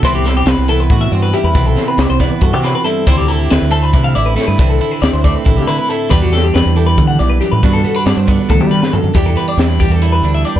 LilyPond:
<<
  \new Staff \with { instrumentName = "Clean electric guitar" } { \time 7/8 \key e \minor \tempo 4 = 138 c''16 g'16 a'16 g'16 b'8 a'16 b'8 e''16 c''16 b'16 g'16 b'16~ | b'16 a'8 b'16 d''16 c''16 d''16 b'16 a'16 g'16 b'16 b'16 a'8 | c''16 g'16 a'16 g'16 b'8 a'16 b'8 f''16 d''16 b'16 a'16 b'16~ | b'16 a'8 b'16 d''16 c''16 d''16 b'16 a'16 g'16 b'16 b'16 a'8 |
b'16 fis'16 a'16 g'16 b'8 a'16 b'8 fis''16 d''16 b'16 g'16 b'16~ | b'16 a'8 b'16 d''16 c''16 d''16 b'16 a'16 g'16 b'16 b'16 a'8 | g'16 a'16 b'16 d''16 b'8 g'16 a'8 b'8 e''16 d''16 b'16 | }
  \new Staff \with { instrumentName = "Clean electric guitar" } { \time 7/8 \key e \minor << { <b c' e'>8 c'4 b8 fis'8 c'8 e'8 | <b c' e'>8 c'4 b8 fis'8 c'8 e'8 | <c' e'>8 e'4 c'8 e'8 e'8 e'8 | <c' e'>8 e'4 c'8 e'8 e'8 e'8 |
<g d' g'>8 d'4 g2 | <b d' fis'>8 b16 d'8. b2 | <e g d' g'>8 b16 d'8. g8 e'8 d'8 g8 | } \\ { c4. e4. g,8 | c4. e4. g,8 | d4. a4. a,8 | d4. a4. a,8 |
e,4. e4 e,8 fis,8 | g,4. d8 a,8 g,8 fis,8 | e,4 e2~ e8 | } >> }
  \new Staff \with { instrumentName = "Fingered electric bass" } { \clef bass \time 7/8 \key e \minor c,4 c,16 c,8. a,8 g,8 r16 e,16 | b,,8 r8 c,16 c,8 r16 g,16 c8 r8. | d,4 d,16 d,8. c8 a,,8 r16 g,16 | c,8 r8 d,16 d,8 r16 a,,16 d8 r8. |
e,4 e,16 e,8. d8 b,,8 r16 a,16 | g,8 r8 g,16 g,8 r16 d,16 g8 r8. | e,8 r8 e,8. e,8. d,8 r16 e,16 | }
  \new DrumStaff \with { instrumentName = "Drums" } \drummode { \time 7/8 <hh bd>8 <hh sn>8 <hh sn>8 hh8 <hh bd>8 hh8 hh8 | <hh bd>8 <hh sn>8 <hh sn>8 <hh bd sn>8 <hh bd>8 <hh sn>8 hh8 | <hh bd>8 hh8 <hh sn>8 hh8 <hh bd>8 hh8 <hh sn>8 | <hh bd>8 hh8 <hh sn>8 <hh bd>8 <hh bd>8 hh8 hh8 |
<hh bd>8 <hh sn>8 <hh sn>8 hh8 <hh bd>8 hh8 hh8 | <hh bd>8 hh8 <hh sn>8 <hh bd>8 <bd tommh>16 tommh8 sn16 tomfh16 tomfh16 | <hh bd>8 hh8 <hh sn>8 <hh bd>8 hh8 hh8 hh8 | }
>>